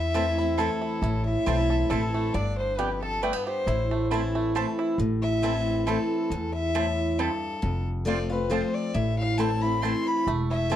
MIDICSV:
0, 0, Header, 1, 6, 480
1, 0, Start_track
1, 0, Key_signature, 0, "minor"
1, 0, Tempo, 440205
1, 1120, Time_signature, 3, 2, 24, 8
1, 11731, End_track
2, 0, Start_track
2, 0, Title_t, "Fiddle"
2, 0, Program_c, 0, 110
2, 0, Note_on_c, 0, 76, 105
2, 628, Note_on_c, 0, 69, 78
2, 645, Note_off_c, 0, 76, 0
2, 1361, Note_off_c, 0, 69, 0
2, 1368, Note_on_c, 0, 76, 112
2, 2070, Note_on_c, 0, 69, 90
2, 2086, Note_off_c, 0, 76, 0
2, 2553, Note_on_c, 0, 74, 84
2, 2569, Note_off_c, 0, 69, 0
2, 2801, Note_off_c, 0, 74, 0
2, 2808, Note_on_c, 0, 72, 82
2, 3024, Note_on_c, 0, 71, 78
2, 3040, Note_off_c, 0, 72, 0
2, 3285, Note_off_c, 0, 71, 0
2, 3291, Note_on_c, 0, 69, 97
2, 3516, Note_on_c, 0, 71, 84
2, 3532, Note_off_c, 0, 69, 0
2, 3755, Note_off_c, 0, 71, 0
2, 3762, Note_on_c, 0, 72, 97
2, 4428, Note_off_c, 0, 72, 0
2, 5696, Note_on_c, 0, 76, 103
2, 6395, Note_on_c, 0, 69, 75
2, 6412, Note_off_c, 0, 76, 0
2, 7124, Note_off_c, 0, 69, 0
2, 7131, Note_on_c, 0, 76, 110
2, 7846, Note_on_c, 0, 69, 86
2, 7862, Note_off_c, 0, 76, 0
2, 8583, Note_off_c, 0, 69, 0
2, 8793, Note_on_c, 0, 74, 88
2, 9038, Note_off_c, 0, 74, 0
2, 9062, Note_on_c, 0, 71, 80
2, 9279, Note_on_c, 0, 72, 84
2, 9295, Note_off_c, 0, 71, 0
2, 9536, Note_on_c, 0, 74, 94
2, 9552, Note_off_c, 0, 72, 0
2, 9758, Note_on_c, 0, 76, 84
2, 9775, Note_off_c, 0, 74, 0
2, 10011, Note_off_c, 0, 76, 0
2, 10017, Note_on_c, 0, 77, 101
2, 10230, Note_on_c, 0, 81, 94
2, 10246, Note_off_c, 0, 77, 0
2, 10490, Note_on_c, 0, 83, 105
2, 10506, Note_off_c, 0, 81, 0
2, 10711, Note_on_c, 0, 84, 111
2, 10727, Note_off_c, 0, 83, 0
2, 10983, Note_on_c, 0, 83, 112
2, 11000, Note_off_c, 0, 84, 0
2, 11202, Note_off_c, 0, 83, 0
2, 11456, Note_on_c, 0, 76, 103
2, 11731, Note_off_c, 0, 76, 0
2, 11731, End_track
3, 0, Start_track
3, 0, Title_t, "Mandolin"
3, 0, Program_c, 1, 25
3, 157, Note_on_c, 1, 60, 83
3, 159, Note_on_c, 1, 64, 84
3, 163, Note_on_c, 1, 72, 94
3, 166, Note_on_c, 1, 81, 93
3, 265, Note_off_c, 1, 60, 0
3, 266, Note_off_c, 1, 64, 0
3, 268, Note_off_c, 1, 72, 0
3, 270, Note_off_c, 1, 81, 0
3, 627, Note_on_c, 1, 60, 84
3, 630, Note_on_c, 1, 64, 99
3, 633, Note_on_c, 1, 72, 90
3, 639, Note_on_c, 1, 81, 92
3, 740, Note_off_c, 1, 60, 0
3, 742, Note_off_c, 1, 64, 0
3, 743, Note_off_c, 1, 72, 0
3, 746, Note_off_c, 1, 81, 0
3, 1595, Note_on_c, 1, 60, 86
3, 1601, Note_on_c, 1, 72, 93
3, 1602, Note_on_c, 1, 64, 86
3, 1608, Note_on_c, 1, 81, 91
3, 1704, Note_off_c, 1, 60, 0
3, 1707, Note_off_c, 1, 72, 0
3, 1708, Note_off_c, 1, 64, 0
3, 1711, Note_off_c, 1, 81, 0
3, 2072, Note_on_c, 1, 60, 79
3, 2075, Note_on_c, 1, 64, 87
3, 2076, Note_on_c, 1, 72, 87
3, 2082, Note_on_c, 1, 81, 106
3, 2183, Note_off_c, 1, 60, 0
3, 2185, Note_off_c, 1, 64, 0
3, 2185, Note_off_c, 1, 72, 0
3, 2188, Note_off_c, 1, 81, 0
3, 3036, Note_on_c, 1, 59, 79
3, 3038, Note_on_c, 1, 67, 83
3, 3039, Note_on_c, 1, 74, 89
3, 3042, Note_on_c, 1, 79, 88
3, 3145, Note_off_c, 1, 59, 0
3, 3146, Note_off_c, 1, 67, 0
3, 3146, Note_off_c, 1, 74, 0
3, 3148, Note_off_c, 1, 79, 0
3, 3517, Note_on_c, 1, 59, 92
3, 3521, Note_on_c, 1, 67, 88
3, 3522, Note_on_c, 1, 74, 98
3, 3527, Note_on_c, 1, 79, 93
3, 3625, Note_off_c, 1, 59, 0
3, 3628, Note_off_c, 1, 67, 0
3, 3628, Note_off_c, 1, 74, 0
3, 3630, Note_off_c, 1, 79, 0
3, 4478, Note_on_c, 1, 60, 91
3, 4483, Note_on_c, 1, 64, 89
3, 4484, Note_on_c, 1, 72, 97
3, 4489, Note_on_c, 1, 81, 91
3, 4586, Note_off_c, 1, 60, 0
3, 4589, Note_off_c, 1, 64, 0
3, 4589, Note_off_c, 1, 72, 0
3, 4591, Note_off_c, 1, 81, 0
3, 4961, Note_on_c, 1, 60, 84
3, 4966, Note_on_c, 1, 64, 86
3, 4971, Note_on_c, 1, 72, 97
3, 4971, Note_on_c, 1, 81, 105
3, 5067, Note_off_c, 1, 60, 0
3, 5070, Note_off_c, 1, 64, 0
3, 5072, Note_off_c, 1, 72, 0
3, 5072, Note_off_c, 1, 81, 0
3, 5915, Note_on_c, 1, 60, 77
3, 5923, Note_on_c, 1, 64, 82
3, 5924, Note_on_c, 1, 72, 94
3, 5927, Note_on_c, 1, 81, 91
3, 6025, Note_off_c, 1, 60, 0
3, 6029, Note_off_c, 1, 64, 0
3, 6029, Note_off_c, 1, 72, 0
3, 6030, Note_off_c, 1, 81, 0
3, 6397, Note_on_c, 1, 60, 81
3, 6398, Note_on_c, 1, 64, 88
3, 6406, Note_on_c, 1, 72, 97
3, 6407, Note_on_c, 1, 81, 89
3, 6505, Note_off_c, 1, 60, 0
3, 6506, Note_off_c, 1, 64, 0
3, 6510, Note_off_c, 1, 72, 0
3, 6511, Note_off_c, 1, 81, 0
3, 7359, Note_on_c, 1, 60, 84
3, 7361, Note_on_c, 1, 64, 97
3, 7367, Note_on_c, 1, 81, 93
3, 7368, Note_on_c, 1, 72, 90
3, 7467, Note_off_c, 1, 60, 0
3, 7468, Note_off_c, 1, 64, 0
3, 7470, Note_off_c, 1, 81, 0
3, 7471, Note_off_c, 1, 72, 0
3, 7839, Note_on_c, 1, 60, 92
3, 7843, Note_on_c, 1, 64, 96
3, 7844, Note_on_c, 1, 72, 92
3, 7848, Note_on_c, 1, 81, 100
3, 7946, Note_off_c, 1, 60, 0
3, 7948, Note_off_c, 1, 64, 0
3, 7949, Note_off_c, 1, 72, 0
3, 7951, Note_off_c, 1, 81, 0
3, 8808, Note_on_c, 1, 60, 88
3, 8811, Note_on_c, 1, 65, 83
3, 8811, Note_on_c, 1, 72, 85
3, 8814, Note_on_c, 1, 81, 91
3, 8911, Note_off_c, 1, 60, 0
3, 8912, Note_off_c, 1, 65, 0
3, 8912, Note_off_c, 1, 72, 0
3, 8914, Note_off_c, 1, 81, 0
3, 9281, Note_on_c, 1, 60, 91
3, 9285, Note_on_c, 1, 65, 95
3, 9290, Note_on_c, 1, 72, 93
3, 9293, Note_on_c, 1, 81, 95
3, 9387, Note_off_c, 1, 60, 0
3, 9389, Note_off_c, 1, 65, 0
3, 9392, Note_off_c, 1, 72, 0
3, 9393, Note_off_c, 1, 81, 0
3, 10239, Note_on_c, 1, 60, 86
3, 10243, Note_on_c, 1, 64, 86
3, 10248, Note_on_c, 1, 72, 101
3, 10250, Note_on_c, 1, 81, 98
3, 10346, Note_off_c, 1, 60, 0
3, 10348, Note_off_c, 1, 64, 0
3, 10351, Note_off_c, 1, 72, 0
3, 10352, Note_off_c, 1, 81, 0
3, 10711, Note_on_c, 1, 60, 83
3, 10713, Note_on_c, 1, 64, 91
3, 10716, Note_on_c, 1, 72, 95
3, 10720, Note_on_c, 1, 81, 96
3, 10822, Note_off_c, 1, 60, 0
3, 10823, Note_off_c, 1, 64, 0
3, 10825, Note_off_c, 1, 72, 0
3, 10827, Note_off_c, 1, 81, 0
3, 11681, Note_on_c, 1, 60, 85
3, 11682, Note_on_c, 1, 64, 80
3, 11686, Note_on_c, 1, 72, 86
3, 11688, Note_on_c, 1, 81, 105
3, 11731, Note_off_c, 1, 60, 0
3, 11731, Note_off_c, 1, 64, 0
3, 11731, Note_off_c, 1, 72, 0
3, 11731, Note_off_c, 1, 81, 0
3, 11731, End_track
4, 0, Start_track
4, 0, Title_t, "Five-string banjo"
4, 0, Program_c, 2, 105
4, 0, Note_on_c, 2, 64, 66
4, 0, Note_on_c, 2, 69, 63
4, 154, Note_off_c, 2, 69, 0
4, 158, Note_on_c, 2, 69, 59
4, 413, Note_off_c, 2, 64, 0
4, 417, Note_on_c, 2, 64, 57
4, 624, Note_off_c, 2, 69, 0
4, 638, Note_on_c, 2, 69, 66
4, 877, Note_off_c, 2, 64, 0
4, 890, Note_on_c, 2, 64, 62
4, 1104, Note_off_c, 2, 64, 0
4, 1117, Note_on_c, 2, 64, 70
4, 1327, Note_off_c, 2, 69, 0
4, 1583, Note_off_c, 2, 64, 0
4, 1596, Note_on_c, 2, 64, 58
4, 1854, Note_on_c, 2, 69, 57
4, 2058, Note_off_c, 2, 64, 0
4, 2071, Note_on_c, 2, 64, 67
4, 2337, Note_on_c, 2, 57, 62
4, 2513, Note_off_c, 2, 69, 0
4, 2556, Note_off_c, 2, 64, 0
4, 2559, Note_off_c, 2, 57, 0
4, 2560, Note_on_c, 2, 62, 66
4, 3038, Note_on_c, 2, 67, 55
4, 3248, Note_off_c, 2, 62, 0
4, 3299, Note_on_c, 2, 69, 55
4, 3525, Note_on_c, 2, 57, 66
4, 3630, Note_off_c, 2, 57, 0
4, 3630, Note_on_c, 2, 59, 69
4, 3727, Note_off_c, 2, 67, 0
4, 3781, Note_on_c, 2, 67, 62
4, 3956, Note_off_c, 2, 69, 0
4, 4001, Note_off_c, 2, 67, 0
4, 4003, Note_off_c, 2, 59, 0
4, 4006, Note_on_c, 2, 64, 69
4, 4267, Note_on_c, 2, 57, 56
4, 4475, Note_off_c, 2, 64, 0
4, 4488, Note_on_c, 2, 64, 59
4, 4733, Note_off_c, 2, 57, 0
4, 4746, Note_on_c, 2, 57, 68
4, 4969, Note_on_c, 2, 69, 68
4, 5172, Note_off_c, 2, 64, 0
4, 5221, Note_on_c, 2, 64, 60
4, 5399, Note_off_c, 2, 57, 0
4, 5441, Note_off_c, 2, 64, 0
4, 5445, Note_off_c, 2, 69, 0
4, 11204, Note_on_c, 2, 57, 80
4, 11463, Note_on_c, 2, 64, 54
4, 11685, Note_on_c, 2, 69, 61
4, 11731, Note_off_c, 2, 57, 0
4, 11731, Note_off_c, 2, 64, 0
4, 11731, Note_off_c, 2, 69, 0
4, 11731, End_track
5, 0, Start_track
5, 0, Title_t, "Steel-string acoustic guitar"
5, 0, Program_c, 3, 25
5, 0, Note_on_c, 3, 40, 85
5, 154, Note_on_c, 3, 52, 96
5, 164, Note_on_c, 3, 57, 96
5, 172, Note_on_c, 3, 60, 92
5, 180, Note_on_c, 3, 64, 92
5, 406, Note_off_c, 3, 52, 0
5, 407, Note_off_c, 3, 64, 0
5, 411, Note_off_c, 3, 57, 0
5, 415, Note_off_c, 3, 60, 0
5, 420, Note_on_c, 3, 64, 61
5, 445, Note_on_c, 3, 60, 53
5, 599, Note_off_c, 3, 40, 0
5, 631, Note_off_c, 3, 64, 0
5, 639, Note_on_c, 3, 52, 76
5, 644, Note_off_c, 3, 60, 0
5, 650, Note_on_c, 3, 57, 85
5, 656, Note_on_c, 3, 60, 90
5, 665, Note_on_c, 3, 64, 98
5, 1098, Note_off_c, 3, 52, 0
5, 1103, Note_off_c, 3, 57, 0
5, 1106, Note_off_c, 3, 60, 0
5, 1110, Note_off_c, 3, 64, 0
5, 1129, Note_on_c, 3, 45, 93
5, 1595, Note_on_c, 3, 52, 92
5, 1600, Note_on_c, 3, 57, 95
5, 1611, Note_on_c, 3, 60, 100
5, 1620, Note_on_c, 3, 64, 97
5, 2041, Note_off_c, 3, 45, 0
5, 2056, Note_off_c, 3, 52, 0
5, 2058, Note_off_c, 3, 57, 0
5, 2063, Note_off_c, 3, 60, 0
5, 2068, Note_off_c, 3, 64, 0
5, 2071, Note_on_c, 3, 52, 84
5, 2078, Note_on_c, 3, 57, 95
5, 2091, Note_on_c, 3, 60, 84
5, 2100, Note_on_c, 3, 64, 97
5, 2534, Note_off_c, 3, 52, 0
5, 2537, Note_off_c, 3, 57, 0
5, 2544, Note_off_c, 3, 60, 0
5, 2548, Note_off_c, 3, 64, 0
5, 2554, Note_on_c, 3, 43, 88
5, 3034, Note_off_c, 3, 43, 0
5, 3039, Note_on_c, 3, 41, 92
5, 3497, Note_off_c, 3, 41, 0
5, 3520, Note_on_c, 3, 43, 83
5, 3978, Note_off_c, 3, 43, 0
5, 4010, Note_on_c, 3, 45, 84
5, 4485, Note_on_c, 3, 52, 88
5, 4492, Note_on_c, 3, 57, 82
5, 4506, Note_on_c, 3, 60, 96
5, 4512, Note_on_c, 3, 64, 94
5, 4921, Note_off_c, 3, 45, 0
5, 4941, Note_off_c, 3, 52, 0
5, 4944, Note_off_c, 3, 57, 0
5, 4951, Note_off_c, 3, 60, 0
5, 4954, Note_off_c, 3, 64, 0
5, 4962, Note_on_c, 3, 52, 76
5, 4973, Note_on_c, 3, 57, 90
5, 4979, Note_on_c, 3, 60, 93
5, 4982, Note_on_c, 3, 64, 94
5, 5419, Note_off_c, 3, 52, 0
5, 5425, Note_off_c, 3, 57, 0
5, 5428, Note_off_c, 3, 60, 0
5, 5429, Note_off_c, 3, 64, 0
5, 5447, Note_on_c, 3, 45, 87
5, 5915, Note_on_c, 3, 52, 81
5, 5923, Note_on_c, 3, 57, 102
5, 5931, Note_on_c, 3, 60, 97
5, 5943, Note_on_c, 3, 64, 99
5, 6360, Note_off_c, 3, 45, 0
5, 6376, Note_off_c, 3, 52, 0
5, 6380, Note_off_c, 3, 57, 0
5, 6384, Note_off_c, 3, 60, 0
5, 6390, Note_off_c, 3, 64, 0
5, 6399, Note_on_c, 3, 52, 88
5, 6406, Note_on_c, 3, 57, 84
5, 6416, Note_on_c, 3, 60, 84
5, 6421, Note_on_c, 3, 64, 91
5, 6858, Note_off_c, 3, 52, 0
5, 6861, Note_off_c, 3, 57, 0
5, 6866, Note_off_c, 3, 60, 0
5, 6869, Note_off_c, 3, 64, 0
5, 6886, Note_on_c, 3, 40, 94
5, 7358, Note_on_c, 3, 45, 96
5, 7799, Note_off_c, 3, 40, 0
5, 7817, Note_off_c, 3, 45, 0
5, 7840, Note_on_c, 3, 43, 85
5, 8298, Note_off_c, 3, 43, 0
5, 8311, Note_on_c, 3, 41, 92
5, 8778, Note_on_c, 3, 53, 88
5, 8784, Note_on_c, 3, 57, 99
5, 8797, Note_on_c, 3, 60, 87
5, 8801, Note_on_c, 3, 65, 104
5, 9033, Note_off_c, 3, 65, 0
5, 9038, Note_off_c, 3, 53, 0
5, 9042, Note_off_c, 3, 57, 0
5, 9046, Note_on_c, 3, 65, 62
5, 9048, Note_off_c, 3, 60, 0
5, 9070, Note_on_c, 3, 60, 49
5, 9231, Note_off_c, 3, 41, 0
5, 9264, Note_off_c, 3, 65, 0
5, 9264, Note_on_c, 3, 53, 84
5, 9265, Note_off_c, 3, 60, 0
5, 9273, Note_on_c, 3, 57, 88
5, 9278, Note_on_c, 3, 60, 99
5, 9283, Note_on_c, 3, 65, 95
5, 9730, Note_off_c, 3, 53, 0
5, 9735, Note_off_c, 3, 57, 0
5, 9737, Note_off_c, 3, 60, 0
5, 9740, Note_off_c, 3, 65, 0
5, 9753, Note_on_c, 3, 45, 88
5, 10228, Note_on_c, 3, 52, 81
5, 10236, Note_on_c, 3, 57, 92
5, 10247, Note_on_c, 3, 60, 91
5, 10251, Note_on_c, 3, 64, 97
5, 10483, Note_off_c, 3, 52, 0
5, 10485, Note_off_c, 3, 64, 0
5, 10487, Note_off_c, 3, 57, 0
5, 10493, Note_off_c, 3, 60, 0
5, 10498, Note_on_c, 3, 64, 65
5, 10520, Note_on_c, 3, 60, 49
5, 10673, Note_off_c, 3, 45, 0
5, 10710, Note_off_c, 3, 64, 0
5, 10720, Note_on_c, 3, 52, 75
5, 10721, Note_off_c, 3, 60, 0
5, 10728, Note_on_c, 3, 57, 81
5, 10739, Note_on_c, 3, 60, 89
5, 10744, Note_on_c, 3, 64, 87
5, 11178, Note_off_c, 3, 52, 0
5, 11182, Note_off_c, 3, 57, 0
5, 11188, Note_off_c, 3, 60, 0
5, 11190, Note_off_c, 3, 64, 0
5, 11208, Note_on_c, 3, 40, 84
5, 11664, Note_on_c, 3, 52, 91
5, 11669, Note_on_c, 3, 57, 83
5, 11681, Note_on_c, 3, 60, 96
5, 11687, Note_on_c, 3, 64, 109
5, 11731, Note_off_c, 3, 40, 0
5, 11731, Note_off_c, 3, 52, 0
5, 11731, Note_off_c, 3, 57, 0
5, 11731, Note_off_c, 3, 60, 0
5, 11731, Note_off_c, 3, 64, 0
5, 11731, End_track
6, 0, Start_track
6, 0, Title_t, "Upright bass"
6, 0, Program_c, 4, 32
6, 0, Note_on_c, 4, 40, 85
6, 728, Note_off_c, 4, 40, 0
6, 1111, Note_on_c, 4, 33, 95
6, 1466, Note_off_c, 4, 33, 0
6, 1602, Note_on_c, 4, 35, 86
6, 2010, Note_off_c, 4, 35, 0
6, 2079, Note_on_c, 4, 33, 85
6, 2488, Note_off_c, 4, 33, 0
6, 2554, Note_on_c, 4, 31, 90
6, 3610, Note_off_c, 4, 31, 0
6, 3998, Note_on_c, 4, 33, 89
6, 5053, Note_off_c, 4, 33, 0
6, 5432, Note_on_c, 4, 33, 92
6, 6489, Note_off_c, 4, 33, 0
6, 6872, Note_on_c, 4, 40, 82
6, 7929, Note_off_c, 4, 40, 0
6, 8319, Note_on_c, 4, 29, 92
6, 9373, Note_off_c, 4, 29, 0
6, 9757, Note_on_c, 4, 33, 93
6, 10812, Note_off_c, 4, 33, 0
6, 11197, Note_on_c, 4, 28, 80
6, 11731, Note_off_c, 4, 28, 0
6, 11731, End_track
0, 0, End_of_file